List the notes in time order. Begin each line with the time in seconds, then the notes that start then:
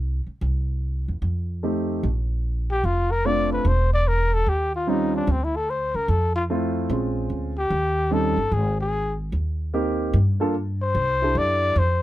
Already playing: C2
0.27 muted upright bass stroke
0.41 C2
1.08 E2
1.22 F2
1.63 A3 C4 D#4 G4
2.03 A#1
2.71 G4
2.84 F1 F4
3.12 A#4
3.25 A3 C4 D4 F4 D5
3.52 B4
3.65 E1 C5
3.94 D5
4.08 A#4
4.34 A4
4.46 D#2 G4
4.75 F4
4.87 G3 C4 C#4 D#4 F4
5.16 D4
5.27 D2
5.31 C4
5.44 E4
5.56 A4
5.70 C5
5.94 C#2 A#4
6.08 F2 A4
6.36 F4
6.50 A3 C4 E4 F4
6.89 A#1 G#3 C4 C#4 F4
7.30 D2
7.58 G4
7.70 D#2
8.11 G3 C4 C#4 D#4 A4
8.37 G1
8.52 G#1 G#4
8.81 G#4
9.32 D#2
9.74 A#3 C4 D#4 G4
10.13 G2
10.40 A#3 D4 F4 A4
10.82 C5
10.95 C2
11.22 D4 E4 G4 A4
11.35 F#2 D5
11.76 F2 C5